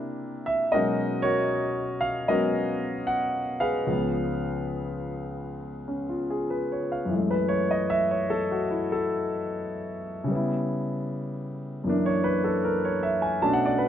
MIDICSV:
0, 0, Header, 1, 2, 480
1, 0, Start_track
1, 0, Tempo, 780234
1, 458, Time_signature, 4, 2, 24, 8
1, 1900, Tempo, 802139
1, 5740, Tempo, 785340
1, 8416, End_track
2, 0, Start_track
2, 0, Title_t, "Grand piano"
2, 0, Program_c, 0, 0
2, 0, Control_c, 0, 64, 127
2, 0, Note_on_c, 0, 48, 57
2, 0, Note_on_c, 0, 58, 52
2, 0, Note_on_c, 0, 62, 52
2, 0, Note_on_c, 0, 64, 60
2, 284, Note_on_c, 0, 76, 81
2, 442, Note_off_c, 0, 48, 0
2, 442, Note_on_c, 0, 75, 90
2, 449, Note_on_c, 0, 47, 54
2, 452, Note_on_c, 0, 54, 51
2, 452, Note_on_c, 0, 56, 50
2, 452, Note_on_c, 0, 66, 65
2, 452, Note_on_c, 0, 70, 63
2, 453, Note_off_c, 0, 58, 0
2, 456, Note_off_c, 0, 76, 0
2, 457, Note_on_c, 0, 63, 66
2, 458, Note_on_c, 0, 61, 53
2, 465, Note_off_c, 0, 62, 0
2, 467, Control_c, 0, 64, 0
2, 475, Note_off_c, 0, 64, 0
2, 556, Control_c, 0, 64, 127
2, 752, Note_off_c, 0, 70, 0
2, 753, Note_off_c, 0, 66, 0
2, 753, Note_on_c, 0, 73, 92
2, 761, Note_on_c, 0, 70, 57
2, 762, Note_on_c, 0, 66, 58
2, 778, Note_off_c, 0, 75, 0
2, 1234, Note_on_c, 0, 77, 92
2, 1258, Note_off_c, 0, 73, 0
2, 1394, Note_off_c, 0, 54, 0
2, 1398, Note_off_c, 0, 56, 0
2, 1399, Note_off_c, 0, 70, 0
2, 1403, Note_off_c, 0, 66, 0
2, 1403, Note_on_c, 0, 54, 45
2, 1404, Note_on_c, 0, 75, 85
2, 1407, Note_on_c, 0, 56, 40
2, 1408, Note_on_c, 0, 70, 63
2, 1411, Note_off_c, 0, 77, 0
2, 1412, Note_on_c, 0, 66, 63
2, 1413, Note_off_c, 0, 61, 0
2, 1414, Note_on_c, 0, 59, 40
2, 1422, Note_on_c, 0, 61, 51
2, 1869, Note_off_c, 0, 75, 0
2, 1888, Note_on_c, 0, 78, 86
2, 1960, Note_off_c, 0, 78, 0
2, 2207, Note_on_c, 0, 77, 89
2, 2210, Note_on_c, 0, 68, 57
2, 2210, Note_on_c, 0, 71, 59
2, 2347, Note_off_c, 0, 70, 0
2, 2349, Note_off_c, 0, 66, 0
2, 2364, Note_off_c, 0, 59, 0
2, 2365, Note_on_c, 0, 37, 48
2, 2366, Note_on_c, 0, 49, 46
2, 2369, Note_off_c, 0, 54, 0
2, 2370, Note_off_c, 0, 47, 0
2, 2371, Note_off_c, 0, 56, 0
2, 2372, Note_on_c, 0, 53, 43
2, 2373, Note_on_c, 0, 59, 55
2, 2374, Note_off_c, 0, 63, 0
2, 2378, Note_off_c, 0, 61, 0
2, 2382, Control_c, 0, 64, 0
2, 2480, Control_c, 0, 64, 127
2, 3570, Note_on_c, 0, 61, 40
2, 3697, Note_on_c, 0, 65, 44
2, 3724, Note_off_c, 0, 61, 0
2, 3815, Note_off_c, 0, 68, 0
2, 3824, Note_on_c, 0, 68, 46
2, 3870, Note_off_c, 0, 65, 0
2, 3934, Note_off_c, 0, 71, 0
2, 3943, Note_on_c, 0, 71, 46
2, 4051, Note_off_c, 0, 68, 0
2, 4073, Note_on_c, 0, 73, 46
2, 4118, Note_off_c, 0, 77, 0
2, 4150, Note_off_c, 0, 71, 0
2, 4191, Note_on_c, 0, 77, 52
2, 4218, Note_off_c, 0, 73, 0
2, 4273, Note_on_c, 0, 42, 45
2, 4296, Note_on_c, 0, 52, 40
2, 4300, Note_off_c, 0, 37, 0
2, 4300, Note_off_c, 0, 49, 0
2, 4303, Note_off_c, 0, 53, 0
2, 4303, Note_off_c, 0, 59, 0
2, 4313, Control_c, 0, 64, 0
2, 4315, Note_on_c, 0, 56, 41
2, 4339, Note_on_c, 0, 57, 48
2, 4354, Note_off_c, 0, 77, 0
2, 4418, Control_c, 0, 64, 127
2, 4424, Note_on_c, 0, 71, 65
2, 4531, Note_on_c, 0, 73, 70
2, 4596, Note_off_c, 0, 71, 0
2, 4652, Note_off_c, 0, 73, 0
2, 4664, Note_on_c, 0, 75, 67
2, 4759, Note_off_c, 0, 75, 0
2, 4778, Note_on_c, 0, 76, 89
2, 4905, Note_on_c, 0, 73, 64
2, 4934, Note_off_c, 0, 76, 0
2, 5020, Note_on_c, 0, 69, 75
2, 5077, Note_off_c, 0, 73, 0
2, 5136, Note_off_c, 0, 69, 0
2, 5147, Note_on_c, 0, 66, 55
2, 5241, Note_off_c, 0, 66, 0
2, 5258, Note_on_c, 0, 64, 58
2, 5390, Note_on_c, 0, 69, 72
2, 5415, Note_off_c, 0, 64, 0
2, 5495, Note_off_c, 0, 69, 0
2, 6190, Note_on_c, 0, 49, 45
2, 6209, Note_off_c, 0, 42, 0
2, 6210, Note_on_c, 0, 55, 42
2, 6221, Note_off_c, 0, 52, 0
2, 6230, Note_off_c, 0, 56, 0
2, 6233, Note_on_c, 0, 59, 43
2, 6234, Control_c, 0, 64, 0
2, 6242, Note_off_c, 0, 57, 0
2, 6257, Note_on_c, 0, 64, 53
2, 6338, Control_c, 0, 64, 127
2, 7166, Note_on_c, 0, 42, 48
2, 7167, Note_off_c, 0, 49, 0
2, 7177, Note_off_c, 0, 55, 0
2, 7179, Note_on_c, 0, 52, 45
2, 7187, Note_on_c, 0, 58, 46
2, 7188, Note_off_c, 0, 59, 0
2, 7192, Control_c, 0, 64, 0
2, 7199, Note_on_c, 0, 62, 54
2, 7200, Note_off_c, 0, 64, 0
2, 7301, Note_on_c, 0, 73, 72
2, 7307, Control_c, 0, 64, 127
2, 7411, Note_on_c, 0, 71, 80
2, 7476, Note_off_c, 0, 73, 0
2, 7533, Note_off_c, 0, 71, 0
2, 7535, Note_on_c, 0, 69, 58
2, 7636, Note_off_c, 0, 69, 0
2, 7658, Note_on_c, 0, 70, 67
2, 7783, Note_on_c, 0, 73, 62
2, 7815, Note_off_c, 0, 70, 0
2, 7893, Note_on_c, 0, 76, 69
2, 7956, Note_off_c, 0, 73, 0
2, 8011, Note_on_c, 0, 80, 67
2, 8013, Note_off_c, 0, 76, 0
2, 8112, Note_off_c, 0, 80, 0
2, 8132, Note_off_c, 0, 42, 0
2, 8132, Note_on_c, 0, 47, 59
2, 8134, Note_off_c, 0, 62, 0
2, 8134, Note_on_c, 0, 81, 88
2, 8135, Note_on_c, 0, 57, 49
2, 8138, Note_off_c, 0, 52, 0
2, 8141, Note_on_c, 0, 61, 53
2, 8142, Note_off_c, 0, 58, 0
2, 8144, Note_on_c, 0, 62, 64
2, 8148, Control_c, 0, 64, 0
2, 8202, Note_on_c, 0, 78, 83
2, 8240, Note_off_c, 0, 81, 0
2, 8266, Control_c, 0, 64, 127
2, 8275, Note_off_c, 0, 78, 0
2, 8276, Note_on_c, 0, 74, 79
2, 8355, Note_on_c, 0, 71, 74
2, 8416, Note_off_c, 0, 47, 0
2, 8416, Note_off_c, 0, 57, 0
2, 8416, Note_off_c, 0, 61, 0
2, 8416, Note_off_c, 0, 62, 0
2, 8416, Note_off_c, 0, 71, 0
2, 8416, Note_off_c, 0, 74, 0
2, 8416, End_track
0, 0, End_of_file